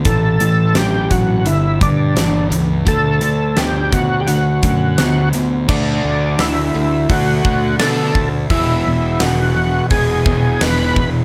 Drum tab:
CC |--------|--------|x-------|--------|
HH |xxxxxxxx|xxxxxxxx|--o-o-o-|o-o-o-o-|
SD |--o---o-|--o---o-|--o---o-|--o---o-|
BD |o--o-o--|o--o-o--|o---oo-o|o---oo-o|